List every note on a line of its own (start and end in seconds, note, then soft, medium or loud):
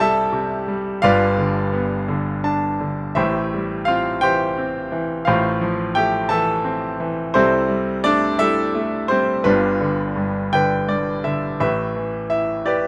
0.00 0.99 C2 medium
0.00 0.33 C3 medium
0.00 0.68 G3 medium
0.00 1.05 E4 medium
0.00 1.05 G4 medium
0.00 1.04 A4 medium
0.00 1.05 E5 medium
0.00 1.04 G5 medium
0.00 0.65 A5 medium
0.33 1.00 C3 medium
0.68 1.02 G3 medium
1.02 3.12 G1 medium
1.02 3.11 G2 medium
1.02 1.78 F4 medium
1.02 1.79 B4 medium
1.02 1.78 D5 medium
1.02 1.77 F5 loud
1.38 2.07 D3 soft
1.73 3.11 B3 medium
2.08 2.79 D3 medium
2.44 3.13 D4 soft
2.44 3.12 A5 medium
2.80 3.15 D3 soft
3.15 5.23 A1 medium
3.15 5.23 A2 medium
3.15 3.83 E4 medium
3.15 3.84 G4 medium
3.15 3.83 C5 medium
3.15 3.89 E5 medium
3.54 4.89 G3 soft
3.85 4.56 C4 soft
3.85 4.20 F4 medium
3.85 4.22 F5 medium
4.21 4.91 E3 medium
4.21 4.89 G4 medium
4.21 4.88 C5 medium
4.21 4.87 G5 medium
4.58 5.25 C4 medium
4.92 5.26 E3 medium
5.25 7.31 A1 medium
5.25 7.30 A2 medium
5.25 5.92 F4 medium
5.25 5.92 C5 medium
5.25 5.97 F5 medium
5.61 6.95 F3 medium
5.95 7.30 A3 medium
5.95 6.28 G4 medium
5.95 6.31 G5 medium
6.29 6.98 E3 medium
6.29 6.96 A4 medium
6.29 6.95 E5 medium
6.29 6.95 A5 medium
6.64 7.32 C4 medium
7.00 7.33 E3 medium
7.34 9.42 C2 medium
7.34 9.42 C3 medium
7.34 8.01 C4 medium
7.34 8.01 E4 medium
7.34 8.00 A4 medium
7.34 8.06 C5 medium
7.69 8.38 G3 medium
8.04 8.73 A3 medium
8.04 8.38 D4 medium
8.04 8.40 D5 loud
8.39 9.09 G3 medium
8.39 9.06 E4 medium
8.39 9.06 A4 medium
8.39 9.12 E5 loud
8.75 9.43 A3 medium
9.08 9.44 G3 medium
9.08 9.43 C4 medium
9.08 9.42 C5 medium
9.44 11.57 G1 medium
9.44 10.15 G2 medium
9.44 11.22 B3 medium
9.44 11.22 D4 medium
9.44 11.22 F4 medium
9.44 10.53 B4 medium
9.80 10.51 D3 medium
10.16 10.87 G2 medium
10.53 11.22 D3 medium
10.53 11.58 B4 medium
10.53 11.64 G5 medium
10.88 11.58 G2 medium
10.88 11.23 D5 medium
11.24 11.59 D3 soft
11.24 11.58 E5 medium
11.60 12.88 A1 medium
11.60 12.88 A2 medium
11.60 12.63 B4 soft
11.60 12.28 E5 medium
11.96 12.88 E3 soft
12.30 12.88 E4 soft
12.30 12.63 E5 medium
12.65 12.88 G4 medium
12.65 12.88 B4 medium
12.65 12.88 D5 medium